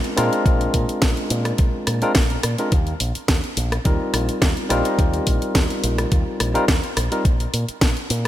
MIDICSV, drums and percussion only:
0, 0, Header, 1, 2, 480
1, 0, Start_track
1, 0, Key_signature, -3, "major"
1, 0, Tempo, 566038
1, 389, Time_signature, 4, 2, 24, 8
1, 7020, End_track
2, 0, Start_track
2, 0, Title_t, "Drums"
2, 36, Note_on_c, 9, 42, 37
2, 121, Note_off_c, 9, 42, 0
2, 148, Note_on_c, 9, 37, 80
2, 148, Note_on_c, 9, 46, 112
2, 233, Note_off_c, 9, 37, 0
2, 233, Note_off_c, 9, 46, 0
2, 277, Note_on_c, 9, 42, 50
2, 362, Note_off_c, 9, 42, 0
2, 387, Note_on_c, 9, 36, 127
2, 389, Note_on_c, 9, 42, 76
2, 472, Note_off_c, 9, 36, 0
2, 474, Note_off_c, 9, 42, 0
2, 517, Note_on_c, 9, 42, 35
2, 601, Note_off_c, 9, 42, 0
2, 626, Note_on_c, 9, 46, 107
2, 627, Note_on_c, 9, 36, 65
2, 711, Note_off_c, 9, 46, 0
2, 712, Note_off_c, 9, 36, 0
2, 755, Note_on_c, 9, 42, 52
2, 840, Note_off_c, 9, 42, 0
2, 863, Note_on_c, 9, 38, 119
2, 865, Note_on_c, 9, 42, 78
2, 867, Note_on_c, 9, 36, 125
2, 947, Note_off_c, 9, 38, 0
2, 950, Note_off_c, 9, 42, 0
2, 952, Note_off_c, 9, 36, 0
2, 993, Note_on_c, 9, 42, 36
2, 1077, Note_off_c, 9, 42, 0
2, 1106, Note_on_c, 9, 46, 111
2, 1191, Note_off_c, 9, 46, 0
2, 1231, Note_on_c, 9, 37, 73
2, 1231, Note_on_c, 9, 42, 47
2, 1316, Note_off_c, 9, 37, 0
2, 1316, Note_off_c, 9, 42, 0
2, 1343, Note_on_c, 9, 42, 77
2, 1347, Note_on_c, 9, 36, 123
2, 1427, Note_off_c, 9, 42, 0
2, 1432, Note_off_c, 9, 36, 0
2, 1585, Note_on_c, 9, 37, 76
2, 1585, Note_on_c, 9, 46, 110
2, 1670, Note_off_c, 9, 37, 0
2, 1670, Note_off_c, 9, 46, 0
2, 1711, Note_on_c, 9, 42, 50
2, 1795, Note_off_c, 9, 42, 0
2, 1821, Note_on_c, 9, 38, 120
2, 1823, Note_on_c, 9, 42, 75
2, 1827, Note_on_c, 9, 36, 123
2, 1905, Note_off_c, 9, 38, 0
2, 1908, Note_off_c, 9, 42, 0
2, 1912, Note_off_c, 9, 36, 0
2, 1951, Note_on_c, 9, 42, 35
2, 2036, Note_off_c, 9, 42, 0
2, 2064, Note_on_c, 9, 37, 79
2, 2064, Note_on_c, 9, 46, 111
2, 2149, Note_off_c, 9, 37, 0
2, 2149, Note_off_c, 9, 46, 0
2, 2191, Note_on_c, 9, 42, 50
2, 2276, Note_off_c, 9, 42, 0
2, 2306, Note_on_c, 9, 42, 77
2, 2308, Note_on_c, 9, 36, 125
2, 2390, Note_off_c, 9, 42, 0
2, 2393, Note_off_c, 9, 36, 0
2, 2431, Note_on_c, 9, 42, 34
2, 2516, Note_off_c, 9, 42, 0
2, 2545, Note_on_c, 9, 46, 106
2, 2630, Note_off_c, 9, 46, 0
2, 2673, Note_on_c, 9, 42, 51
2, 2758, Note_off_c, 9, 42, 0
2, 2784, Note_on_c, 9, 38, 116
2, 2787, Note_on_c, 9, 42, 79
2, 2788, Note_on_c, 9, 36, 115
2, 2869, Note_off_c, 9, 38, 0
2, 2871, Note_off_c, 9, 42, 0
2, 2873, Note_off_c, 9, 36, 0
2, 2914, Note_on_c, 9, 42, 35
2, 2999, Note_off_c, 9, 42, 0
2, 3027, Note_on_c, 9, 46, 102
2, 3112, Note_off_c, 9, 46, 0
2, 3156, Note_on_c, 9, 37, 79
2, 3156, Note_on_c, 9, 42, 50
2, 3241, Note_off_c, 9, 37, 0
2, 3241, Note_off_c, 9, 42, 0
2, 3266, Note_on_c, 9, 42, 77
2, 3268, Note_on_c, 9, 36, 117
2, 3351, Note_off_c, 9, 42, 0
2, 3353, Note_off_c, 9, 36, 0
2, 3508, Note_on_c, 9, 37, 80
2, 3508, Note_on_c, 9, 46, 109
2, 3593, Note_off_c, 9, 37, 0
2, 3593, Note_off_c, 9, 46, 0
2, 3636, Note_on_c, 9, 42, 50
2, 3720, Note_off_c, 9, 42, 0
2, 3746, Note_on_c, 9, 38, 112
2, 3748, Note_on_c, 9, 42, 73
2, 3749, Note_on_c, 9, 36, 115
2, 3831, Note_off_c, 9, 38, 0
2, 3833, Note_off_c, 9, 36, 0
2, 3833, Note_off_c, 9, 42, 0
2, 3876, Note_on_c, 9, 42, 36
2, 3961, Note_off_c, 9, 42, 0
2, 3988, Note_on_c, 9, 37, 85
2, 3988, Note_on_c, 9, 46, 109
2, 4073, Note_off_c, 9, 37, 0
2, 4073, Note_off_c, 9, 46, 0
2, 4114, Note_on_c, 9, 42, 53
2, 4199, Note_off_c, 9, 42, 0
2, 4228, Note_on_c, 9, 36, 118
2, 4229, Note_on_c, 9, 42, 79
2, 4313, Note_off_c, 9, 36, 0
2, 4314, Note_off_c, 9, 42, 0
2, 4355, Note_on_c, 9, 42, 37
2, 4440, Note_off_c, 9, 42, 0
2, 4467, Note_on_c, 9, 46, 103
2, 4469, Note_on_c, 9, 36, 62
2, 4552, Note_off_c, 9, 46, 0
2, 4554, Note_off_c, 9, 36, 0
2, 4596, Note_on_c, 9, 42, 53
2, 4681, Note_off_c, 9, 42, 0
2, 4706, Note_on_c, 9, 38, 112
2, 4709, Note_on_c, 9, 36, 116
2, 4709, Note_on_c, 9, 42, 79
2, 4791, Note_off_c, 9, 38, 0
2, 4793, Note_off_c, 9, 42, 0
2, 4794, Note_off_c, 9, 36, 0
2, 4837, Note_on_c, 9, 42, 38
2, 4922, Note_off_c, 9, 42, 0
2, 4949, Note_on_c, 9, 46, 100
2, 5034, Note_off_c, 9, 46, 0
2, 5075, Note_on_c, 9, 37, 83
2, 5075, Note_on_c, 9, 42, 53
2, 5159, Note_off_c, 9, 37, 0
2, 5159, Note_off_c, 9, 42, 0
2, 5187, Note_on_c, 9, 42, 80
2, 5189, Note_on_c, 9, 36, 115
2, 5272, Note_off_c, 9, 42, 0
2, 5273, Note_off_c, 9, 36, 0
2, 5429, Note_on_c, 9, 37, 83
2, 5429, Note_on_c, 9, 46, 102
2, 5513, Note_off_c, 9, 37, 0
2, 5513, Note_off_c, 9, 46, 0
2, 5556, Note_on_c, 9, 42, 53
2, 5641, Note_off_c, 9, 42, 0
2, 5667, Note_on_c, 9, 38, 113
2, 5668, Note_on_c, 9, 36, 116
2, 5670, Note_on_c, 9, 42, 77
2, 5752, Note_off_c, 9, 38, 0
2, 5753, Note_off_c, 9, 36, 0
2, 5755, Note_off_c, 9, 42, 0
2, 5797, Note_on_c, 9, 42, 37
2, 5881, Note_off_c, 9, 42, 0
2, 5909, Note_on_c, 9, 37, 84
2, 5909, Note_on_c, 9, 46, 103
2, 5994, Note_off_c, 9, 37, 0
2, 5994, Note_off_c, 9, 46, 0
2, 6036, Note_on_c, 9, 42, 53
2, 6121, Note_off_c, 9, 42, 0
2, 6148, Note_on_c, 9, 36, 116
2, 6149, Note_on_c, 9, 42, 84
2, 6233, Note_off_c, 9, 36, 0
2, 6234, Note_off_c, 9, 42, 0
2, 6277, Note_on_c, 9, 42, 39
2, 6362, Note_off_c, 9, 42, 0
2, 6391, Note_on_c, 9, 46, 103
2, 6475, Note_off_c, 9, 46, 0
2, 6517, Note_on_c, 9, 42, 54
2, 6602, Note_off_c, 9, 42, 0
2, 6626, Note_on_c, 9, 38, 118
2, 6629, Note_on_c, 9, 36, 111
2, 6629, Note_on_c, 9, 42, 80
2, 6711, Note_off_c, 9, 38, 0
2, 6713, Note_off_c, 9, 36, 0
2, 6714, Note_off_c, 9, 42, 0
2, 6756, Note_on_c, 9, 42, 39
2, 6841, Note_off_c, 9, 42, 0
2, 6870, Note_on_c, 9, 46, 102
2, 6955, Note_off_c, 9, 46, 0
2, 7020, End_track
0, 0, End_of_file